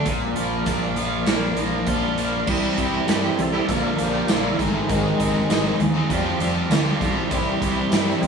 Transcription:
0.06 A#1 A#2 D4 F4 A#4 D5, kick, closed hi-hat
0.35 A#1 F3 A#3, closed hi-hat
0.66 A#1 A#2 D4, kick, closed hi-hat
0.96 F3 F4, closed hi-hat
1.26 A#1 A#3 D4, snare, closed hi-hat, tambourine
1.56 A#1 F3 A#3, closed hi-hat
1.87 A#1 D4 F4, kick, closed hi-hat
2.18 A#3 D4, closed hi-hat
2.47 C2 C3 E3 G3 C4 E4 G4, kick, crash
2.77 C2 C3 G3 C4 E4 G4, kick, closed hi-hat
3.08 G2 C3 G3 C4 E4 G4, snare, closed hi-hat, tambourine
3.23 G3 C4 E4 G4
3.37 C2 G#4 A4, muted overdriven electric guitar stroke, closed hi-hat
3.52 C4 E4 G4
3.57 G3
3.66 A#1 A#2 D3 F3 A#3 D4 A#4, kick, closed hi-hat
3.71 A#3 D4 F4
3.82 F3 A#3 D4 A#4
3.97 A#1 D3 F3 A#3 D4 A#4, closed hi-hat
4.02 F4 G4
4.12 F3 A#3 D4 F4 A#4
4.27 A#1 A#2 D3 F3 A#3 D4 F4 A#4, snare, closed hi-hat, tambourine
4.33 E4
4.43 F3 A#3 D4 F4 A#4
4.57 G#1 G#2 D#3 G#3 C4 D#4 G#4, kick, closed hi-hat
4.63 A3
4.73 G#3 C4 D#4
4.88 G#1 G#2 D#3 G#3 C4 D#4 G#4, kick, closed hi-hat
5.18 G#1 D#3 G#3 C4 D#4, kick, closed hi-hat
5.22 C3 G#3 G#4
5.50 G#1 G#2 D#3 G#3 C4 D#4 G#4, snare, closed hi-hat, tambourine
5.65 G#3 C4 D#4 G#4
5.79 D#2, muted overdriven electric guitar stroke, closed hi-hat
5.96 G#3 C4 D#4 G#4
6.10 F1 F3 G3 C4 F4 G4, kick, closed hi-hat
6.26 C4 F4 G4
6.39 F1 F3 G3 C4 F4 G4, closed hi-hat
6.56 G3 C4 F4 G4
6.70 D2 F3 G3 C4 F4 G4, snare, closed hi-hat, tambourine
6.85 G3 C4 F4 G4
7.00 B1 F3 G3 C4 F4 G4, kick, closed hi-hat
7.13 G3 C4 F4
7.30 C2 C3 E3 G3 C4 E4 G4, kick, closed hi-hat
7.60 C2 C3 G3 C4 E4 G4, kick, closed hi-hat
7.91 G2 C3 G3 C4 E4 G4, snare, closed hi-hat, tambourine
8.07 G3 C4 E4 G4, snare
8.21 C2 G#4, muted overdriven electric guitar stroke, closed hi-hat

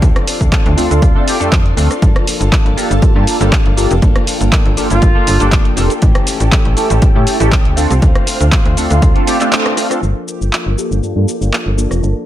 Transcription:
Already playing: F4 D5 C6
0.01 D2 F3 C4 D4 A4, kick, closed hi-hat, cabasa
0.16 cross-stick, closed hi-hat
0.26 F3 C4 D4 A4, open hi-hat, cabasa
0.39 D2 C4 D4 A4, kick, closed hi-hat, cabasa
0.51 F3 C4 D4 A4, kick, clap, closed hi-hat, cabasa
0.66 D2, closed hi-hat
0.76 F3 A3 C4 D4 F4 A4, open hi-hat, cabasa
0.89 D2 C4 D4 F4 A4, closed hi-hat, cabasa
1.02 kick, closed hi-hat, cabasa
1.15 A3 C4 D4 F4 A4
1.27 G4, open hi-hat, cabasa
1.40 F2 A3 C4 D4 F4 G4 A4, closed hi-hat, cabasa
1.51 F2 F3 C4, kick, clap, closed hi-hat, cabasa
1.66 closed hi-hat
1.76 D2 F3 A3 C4 D4 F4 A4, open hi-hat, cabasa
1.90 C4 D4 A4, cross-stick, closed hi-hat, cabasa
2.02 G1 F3 A#3 D4 A4 A5, kick, closed hi-hat, cabasa
2.16 cross-stick, closed hi-hat
2.26 F3 A#3 D4 A4, open hi-hat, cabasa
2.40 G1 A#3 D4 A4, closed hi-hat, cabasa
2.51 F3 A#3 D4, kick, clap, closed hi-hat, cabasa
2.65 G1, closed hi-hat
2.76 F3 A#3 D4 F4 G4 A4, open hi-hat, cabasa
2.90 G1 A#3 D4 A4, closed hi-hat, cabasa
3.02 kick, closed hi-hat, cabasa
3.15 G2 A#3 D4 F4 G4 A4
3.27 open hi-hat, cabasa
3.40 G1 A#3 D4 F4 G4 A4, closed hi-hat, cabasa
3.51 F3, kick, clap, closed hi-hat, cabasa
3.66 G1, closed hi-hat
3.76 F3 A#3 D4 F4 G4 A4, open hi-hat, cabasa
3.90 F1 A#3 D4 A4, closed hi-hat, cabasa
4.02 F3 A#3 D4 A4 G5, kick, closed hi-hat, cabasa
4.16 cross-stick, closed hi-hat
4.26 F3 A#3 D4 A4, open hi-hat, cabasa
4.39 G1 A#3 D4 A4, closed hi-hat, cabasa
4.51 F3 A#3, kick, clap, closed hi-hat, cabasa
4.66 G1, closed hi-hat
4.76 G1 F3 A#3 D4 F4 G4 A4, open hi-hat, cabasa
4.89 G1 A#3 D4 F4 A4, closed hi-hat, cabasa
5.02 G1, kick, closed hi-hat, cabasa
5.15 A#3 D4 F4 G4 A4
5.27 G1, open hi-hat, cabasa
5.40 G1 A#3 D4 F4 G4 A4, closed hi-hat, cabasa
5.51 F3 A#3 D4 A4, kick, clap, closed hi-hat, cabasa
5.65 closed hi-hat
5.76 F1 F3 A#3 D4 F4 G4 A4, open hi-hat, cabasa
5.89 A#3 D4 A4, closed hi-hat, cabasa
6.01 A1 E3 A3 C#4 G4 A4 G5, kick, closed hi-hat, cabasa
6.15 cross-stick, closed hi-hat
6.26 E3 A3 C#4 G4, open hi-hat, cabasa
6.39 A1 A3 C#4 G4, closed hi-hat, cabasa
6.51 E3 A3, kick, clap, closed hi-hat, cabasa
6.65 A1, closed hi-hat
6.75 E3 A3 C#4 E4 G4 A4, open hi-hat, cabasa
6.89 A1 A3 C#4 G4, closed hi-hat, cabasa
7.02 kick, closed hi-hat, cabasa
7.14 A2 A3 C#4 E4 G4 A4
7.27 open hi-hat, cabasa
7.39 A1 A3 C#4 E4 G4 A4, closed hi-hat, cabasa
7.51 E3 G4, kick, clap, closed hi-hat, cabasa
7.65 D2, closed hi-hat
7.76 A3 C4 D4 F4 A4 C5 F5, open hi-hat, cabasa
7.89 C2 C4 F4, closed hi-hat, cabasa
8.01 D2 A3 C4 F4, kick, closed hi-hat, cabasa
8.15 cross-stick, closed hi-hat
8.26 A3 C4 F4, open hi-hat, cabasa
8.39 D2 C4 F4, closed hi-hat, cabasa
8.51 A3 C4 F4, kick, clap, closed hi-hat, cabasa
8.65 D2, closed hi-hat
8.76 A3 C4 D4 F4 A4, open hi-hat, cabasa
8.89 D2 C4 F4, closed hi-hat, cabasa
9.02 D2, kick, closed hi-hat, cabasa
9.14 A3 C4 D4 F4 A4, closed hi-hat
9.26 A3 C4 D4 F4 G4 A4, open hi-hat, cabasa
9.39 A3 C4 D4 F4 G4 A4, clap, closed hi-hat, cabasa
9.52 A3 C4 F4, clap, closed hi-hat, cabasa
9.66 cross-stick, closed hi-hat
9.76 A3 C4 D4 F4 A4, open hi-hat, cabasa
9.89 A3 C4 D4 F4 A4, cross-stick, closed hi-hat, cabasa
10.01 G1 F3 A#3 D4 F4 A5, cabasa
10.05 A4
10.28 cabasa
10.41 G1, cabasa
10.53 clap, cabasa
10.66 G1
10.77 A#3 D4 F4 G4 A4, cabasa
10.91 G1, cabasa
11.01 G2 F3 A#3 D4 A4, cabasa
11.16 G2 A#3 D4 F4 G4 A4
11.28 cabasa
11.40 G1 A#3 D4 F4 G4 A4, cabasa
11.51 F3 A#3 D4 A4, clap, cabasa
11.66 G1
11.77 A#3 D4 F4 G4 A4, cabasa
11.91 F1, cross-stick, cabasa
12.02 G1 F3 A#3 D4 A4, cabasa

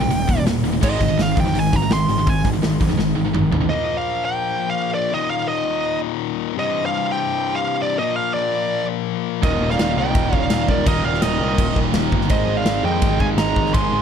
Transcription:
Already playing: G5
0.01 D#2 A#2, snare
0.11 D#1 D#2 A#2, open hi-hat
0.28 D#1 D#2 A#2, kick, open hi-hat
0.36 D#2 A#2
0.45 D#1 D#2 A#2, snare, open hi-hat
0.63 D#1 D#2 A#2, open hi-hat
0.72 D#2 A#2
0.81 G#1 G#2 D#3 G#3 D#5, kick, crash
0.99 G#1 G#2 D#3, kick, open hi-hat
1.08 G#2 D#3
1.18 G#1 G#2 D#3, snare, open hi-hat
1.22 F5
1.36 F2 G#2 D#3 G5, kick, open hi-hat
1.46 G#2 D#3, snare
1.54 G#1 G#2 D#3, open hi-hat
1.59 G#5
1.73 G#1 G#2 D#3 A#5, kick, open hi-hat
1.82 G#2 D#3
1.90 G#1 G#2 D#3 C6, snare, open hi-hat
2.08 G#1 G#2 D#3, open hi-hat
2.19 G#2 D#3
2.27 G#1 G#2 D#3 G#5, kick, open hi-hat
2.45 G#1 G#2 D#3, kick, open hi-hat
2.54 G#2 D#3
2.63 G#1 G#2 D#3, snare, open hi-hat
2.80 F2 G#2 D#3, kick, open hi-hat
2.89 G#2 D#3, snare
2.98 G#1 G#2 D#3, snare
3.16 G#1 G#2 D#3
3.26 G#2 D#3
3.34 G#1 G#2 D#3, mid tom
3.52 A1 G#2 D#3, floor tom
3.60 G#2 D#3
3.69 A#2 F3 A#3 D#5
3.97 F5
4.25 G5
4.70 F5
4.94 D5
5.12 D#2 A#2 D#3 D#5
5.30 F5
5.48 D#5
6.55 C2 G2 C3 D#5
6.86 F5
7.12 G5
7.55 F5
7.82 D5
7.99 A#2 F3 A#3 D#5
8.16 F5
8.34 D5
9.42 D#1 D#2 A#2 D#3 A#4 D#5, kick, crash
9.61 D#1
9.70 D5 F5, snare
9.79 D#1, snare, crash
9.96 C2 D#2 A#2 D#3 D#5 G5
10.15 D#1, kick, crash
10.33 D#1, kick
10.42 D5 F5
10.50 D#1, snare, crash
10.68 D#1 A#4 D5, kick
10.85 D#1 D#2 A#2 D#3 A#4 D#5, kick, crash
11.04 D#1 D5 F5
11.14 snare
11.22 D#1 A#4 D#5, snare, crash
11.39 C2 D#2 A#2 D#3
11.58 D#1, kick, crash
11.76 D#1, kick
11.93 D#1, snare, crash
12.12 G1, kick
12.21 snare
12.29 G#1 G#2 D#3 G#3 C5 D#5, kick, crash
12.47 G#1
12.57 D5 F5
12.65 G#1, snare, crash
12.83 F2 G#2 D#3 G#3 D#5 G5
13.02 G#1, kick, crash
13.20 G#1 F5 G#5, kick
13.37 G#1 D#5 A#5, snare, crash
13.56 G#1, kick
13.65 snare
13.74 G#1 G#2 D#3 G#3 G#5 C6, kick, crash
13.92 G#1

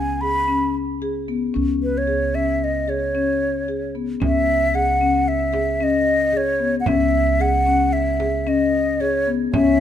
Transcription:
Already playing: C#2 G#5
0.21 G#4 B5
0.48 C#4
1.02 G#4
1.28 B3
1.54 C#2 C#4
1.83 B4
1.98 C#5
2.07 G#4
2.34 C#4 E5
2.64 D#5
2.88 G#4 C#5
3.15 C#4
3.68 G#4
3.95 B3
4.20 C#2 C#4 E5, frame drum
4.47 frame drum
4.74 G#4 F#5, frame drum
5.01 C#4
5.28 E5
5.53 G#4, frame drum
5.80 C#4 D#5
6.33 G#4, frame drum
6.37 C#5
6.60 B3
6.80 F#5
6.86 C#2 C#4 E5, frame drum
7.13 frame drum
7.40 G#4 F#5, frame drum
7.67 C#4
7.93 E5
8.20 G#4, frame drum
8.47 C#4 D#5
9.00 G#4 C#5, frame drum
9.27 B3
9.53 C#2 C#4 E5, frame drum

